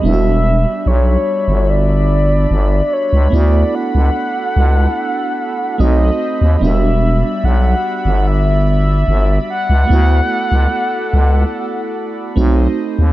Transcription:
0.01 fm bass E1, fm electric piano G3 B3 D4, analog synth pad G3 D4 E5 B5, soft synth lead E5
0.07 fm electric piano E4
0.13 fm electric piano F#4
0.86 fm bass B1, soft synth lead C#5
1.48 fm bass G1
1.70 soft synth lead D5
2.51 fm bass G1
2.93 soft synth lead C#5
3.13 fm bass C#2
3.30 fm bass D2, fm electric piano A3 B3 E4, analog synth pad A4 F#5, soft synth lead D5
3.36 fm electric piano F#4
3.75 soft synth lead F#5
3.95 fm bass C#2
4.56 fm bass C#2
5.78 fm bass B1, fm electric piano A3 C4 D#4 F#4, analog synth pad C5 D#5 B5, soft synth lead D#5
6.41 fm bass D#2
6.59 fm bass E1, fm electric piano F#3 B3 D4, analog synth pad G3 D5 E5, soft synth lead E5
6.64 fm electric piano G3 F#4
7.44 fm bass B1, soft synth lead F#5
8.05 fm bass G1
8.27 soft synth lead E5
8.68 soft synth lead E5
9.08 fm bass G1
9.50 soft synth lead F#5
9.70 fm bass C#2
9.87 fm bass D2, fm electric piano A3 B3 E4, analog synth pad A4 F#5
9.93 fm electric piano F#4
10.52 fm bass C#2
11.13 fm bass C#2
12.36 fm bass B1, fm electric piano A3 C4 D#4 F#4, analog synth pad C5 D#5
12.99 fm bass D#2

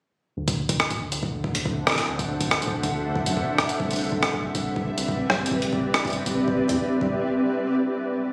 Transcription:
0.37 analog synth bass D2, ambient pad D4 A4 C5 E5 F#5
0.48 kick, closed hi-hat
0.69 kick, closed hi-hat
0.80 cross-stick
0.91 analog synth bass A1, kick, closed hi-hat
1.01 analog synth bass D2
1.12 closed hi-hat
1.23 kick
1.44 kick
1.55 analog synth bass D2, closed hi-hat
1.66 kick
1.87 analog synth bass D1, kick, cross-stick
1.90 cross-stick
1.92 cross-stick
1.95 cross-stick
1.98 cross-stick, closed hi-hat
2.00 cross-stick
2.03 cross-stick
2.06 analog synth bass D2, cross-stick
2.19 kick, closed hi-hat
2.41 kick, closed hi-hat
2.51 cross-stick
2.62 analog synth bass A1, closed hi-hat
2.67 kick
2.73 analog synth bass D2
2.83 kick, closed hi-hat
3.16 analog synth bass D2, kick
3.26 analog synth bass F#2, closed hi-hat
3.37 kick
3.58 kick, cross-stick
3.69 closed hi-hat
3.80 analog synth bass C2, ambient pad C4 G4 B4 D5, kick
3.91 closed hi-hat
3.93 closed hi-hat
3.96 closed hi-hat
3.99 closed hi-hat
4.01 closed hi-hat
4.04 closed hi-hat
4.07 closed hi-hat
4.12 kick
4.23 cross-stick
4.33 analog synth bass G1, kick
4.44 analog synth bass C2
4.55 kick, closed hi-hat
4.76 kick
4.98 analog synth bass C2, closed hi-hat
5.08 kick
5.30 analog synth bass G1, kick, cross-stick
5.46 closed hi-hat
5.51 analog synth bass C2, kick
5.62 closed hi-hat
5.73 kick
5.94 cross-stick
6.05 analog synth bass G1, kick, closed hi-hat
6.07 closed hi-hat
6.10 closed hi-hat
6.13 analog synth bass C2, closed hi-hat
6.26 kick, closed hi-hat
6.48 kick
6.58 analog synth bass C2
6.69 analog synth bass E2, kick, closed hi-hat
7.01 analog synth bass C2, kick

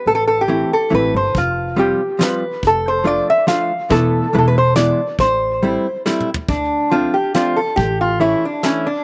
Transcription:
0.06 upright bass A1, resonator guitar played with a steel bar A4
0.15 resonator guitar played with a steel bar A4
0.27 resonator guitar played with a steel bar A4
0.41 resonator guitar played with a steel bar G4
0.48 hollow-body jazz guitar E3 A3 C4 E4
0.73 resonator guitar played with a steel bar A4
0.90 upright bass A1, hollow-body jazz guitar E3 A3 C4 E4
0.95 resonator guitar played with a steel bar B4
1.14 upright bass G1, resonator guitar played with a steel bar C5
1.35 upright bass F1, resonator guitar played with a steel bar F4, kick, closed hi-hat
1.76 hollow-body jazz guitar F3 G3 C4 F4, resonator guitar played with a steel bar G4, closed hi-hat
2.19 hollow-body jazz guitar F3 G3 C4 F4, snare, closed hi-hat
2.23 resonator guitar played with a steel bar B4
2.63 upright bass F1, kick, closed hi-hat
2.67 resonator guitar played with a steel bar A4
2.88 resonator guitar played with a steel bar C5
3.04 hollow-body jazz guitar F3 A3 D4 F4, resonator guitar played with a steel bar D5, closed hi-hat
3.30 resonator guitar played with a steel bar E5
3.47 hollow-body jazz guitar F3 A3 D4 F4, resonator guitar played with a steel bar F5, snare, closed hi-hat
3.90 upright bass E1, hollow-body jazz guitar E3 A3 B3 E4, resonator guitar played with a steel bar A4, kick, closed hi-hat
4.33 upright bass E1, hollow-body jazz guitar E3 G#3 B3 E4, resonator guitar played with a steel bar B4, closed hi-hat
4.38 resonator guitar played with a steel bar A4
4.48 resonator guitar played with a steel bar B4
4.58 resonator guitar played with a steel bar C5
4.76 hollow-body jazz guitar E3 G#3 B3 E4, resonator guitar played with a steel bar D5, snare, closed hi-hat
5.19 upright bass A1, resonator guitar played with a steel bar C5, kick, closed hi-hat
5.62 hollow-body jazz guitar G3 A3 C4 E4, closed hi-hat
6.06 hollow-body jazz guitar G3 A3 C4 E4, snare
6.20 mid tom
6.34 floor tom
6.49 upright bass D2, resonator guitar played with a steel bar D4, kick, closed hi-hat
6.91 hollow-body jazz guitar F3 A3 C4 D4, resonator guitar played with a steel bar F4, closed hi-hat
7.14 resonator guitar played with a steel bar G4
7.35 hollow-body jazz guitar F3 A3 C4 D4, resonator guitar played with a steel bar F4, snare, closed hi-hat
7.56 resonator guitar played with a steel bar A4
7.76 upright bass A1, resonator guitar played with a steel bar G4, kick, closed hi-hat
8.01 resonator guitar played with a steel bar F4
8.20 hollow-body jazz guitar E3 A3 C#4 E4, resonator guitar played with a steel bar E4, closed hi-hat
8.45 resonator guitar played with a steel bar D4
8.63 hollow-body jazz guitar E3 A3 C#4 E4, resonator guitar played with a steel bar C#4, snare, closed hi-hat
8.87 resonator guitar played with a steel bar D4

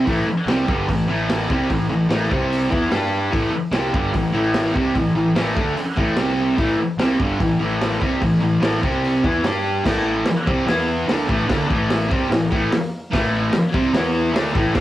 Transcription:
0.06 picked electric bass A1, distorted electric guitar A2 E3 A3, kick, open hi-hat
0.25 muted picked electric bass stroke, muted distorted electric guitar stroke
0.46 picked electric bass C2, distorted electric guitar C3 G3 C4, snare, open hi-hat
0.67 picked electric bass G1, distorted electric guitar G2 D3 G3, kick
0.88 picked electric bass A1, distorted electric guitar A2 E3, kick, open hi-hat
1.07 picked electric bass A1, distorted electric guitar A2 E3 A3
1.30 snare, open hi-hat
1.50 picked electric bass C2, distorted electric guitar C3 G3 C4, kick
1.70 picked electric bass A1, distorted electric guitar A2 E3, kick, open hi-hat
1.89 picked electric bass A1, distorted electric guitar A2 E3
2.09 picked electric bass A1, distorted electric guitar A2 E3 A3, snare, open hi-hat
2.30 picked electric bass C2, distorted electric guitar C3 G3 C4, kick
2.52 open hi-hat
2.69 picked electric bass E2, distorted electric guitar E3 B3 E4, kick
2.90 picked electric bass G2, distorted electric guitar G3 D4 G4, snare, open hi-hat
3.31 picked electric bass A1, distorted electric guitar A2 E3 A3, kick, open hi-hat
3.51 muted distorted electric guitar stroke, muted picked electric bass stroke
3.71 picked electric bass C2, distorted electric guitar C3 G3 C4, snare, open hi-hat
3.93 picked electric bass G1, distorted electric guitar G2 D3 G3, kick
4.14 picked electric bass A1, distorted electric guitar A2 E3, kick, open hi-hat
4.33 picked electric bass A1, distorted electric guitar A2 E3 A3
4.54 snare, open hi-hat
4.74 picked electric bass C2, distorted electric guitar C3 G3 C4, kick
4.95 picked electric bass A1, distorted electric guitar A2 E3, kick, open hi-hat
5.14 picked electric bass A1, distorted electric guitar A2 E3
5.34 picked electric bass A1, distorted electric guitar A2 E3 A3, snare, open hi-hat
5.56 picked electric bass D2, distorted electric guitar D3 A3 D4, kick
5.74 muted picked electric bass stroke, muted distorted electric guitar stroke, open hi-hat
5.96 picked electric bass A1, distorted electric guitar A2 E3 A3, kick
6.15 picked electric bass C2, distorted electric guitar C3 G3 C4, snare, open hi-hat
6.57 picked electric bass A1, distorted electric guitar A2 E3 A3, kick, open hi-hat
6.77 muted distorted electric guitar stroke, muted picked electric bass stroke
6.97 picked electric bass C2, distorted electric guitar C3 G3 C4, snare, open hi-hat
7.19 picked electric bass G1, distorted electric guitar G2 D3 G3, kick
7.40 picked electric bass A1, distorted electric guitar A2 E3, kick, open hi-hat
7.59 picked electric bass A1, distorted electric guitar A2 E3 A3
7.81 snare, open hi-hat
8.01 picked electric bass C2, distorted electric guitar C3 G3 C4, kick
8.22 picked electric bass A1, distorted electric guitar A2 E3, kick, open hi-hat
8.39 picked electric bass A1, distorted electric guitar A2 E3
8.60 picked electric bass A1, distorted electric guitar A2 E3 A3, snare, open hi-hat
8.81 picked electric bass C2, distorted electric guitar C3 G3 C4, kick
9.04 open hi-hat
9.23 picked electric bass E2, distorted electric guitar E3 B3 E4, kick
9.42 picked electric bass G2, distorted electric guitar G3 D4 G4, snare, open hi-hat
9.84 picked electric bass A1, distorted electric guitar A2 E3 A3, kick, snare, crash
10.25 muted distorted electric guitar stroke, muted picked electric bass stroke, snare, open hi-hat
10.46 picked electric bass C2, distorted electric guitar C3 G3 C4, kick
10.65 picked electric bass E2, distorted electric guitar E3 B3 E4, snare, open hi-hat
11.06 picked electric bass D2, distorted electric guitar D3 A3 D4, snare, open hi-hat
11.27 picked electric bass A1, distorted electric guitar A2 E3 A3, kick
11.46 distorted electric guitar D3 A3 D4, snare, open hi-hat
11.50 picked electric bass D2, kick
11.67 picked electric bass A1, distorted electric guitar A2 E3 A3, kick
11.90 snare, open hi-hat
12.10 picked electric bass C2, distorted electric guitar C3 G3 C4, kick
12.29 picked electric bass A1, distorted electric guitar A2 E3, snare, open hi-hat
12.50 picked electric bass A1, distorted electric guitar A2 E3 A3, kick
12.72 muted picked electric bass stroke, muted distorted electric guitar stroke, snare, open hi-hat
13.11 picked electric bass A1, distorted electric guitar A2 E3 A3, kick, snare, open hi-hat
13.51 muted picked electric bass stroke, muted distorted electric guitar stroke, snare, open hi-hat
13.72 picked electric bass C2, distorted electric guitar C3 G3 C4, kick
13.92 picked electric bass E2, distorted electric guitar E3 B3 E4, snare, open hi-hat
14.32 picked electric bass D2, distorted electric guitar D3 A3 D4, snare, open hi-hat
14.53 picked electric bass A1, distorted electric guitar A2 E3 A3, kick
14.74 picked electric bass D2, distorted electric guitar D3 A3 D4, kick, snare, open hi-hat

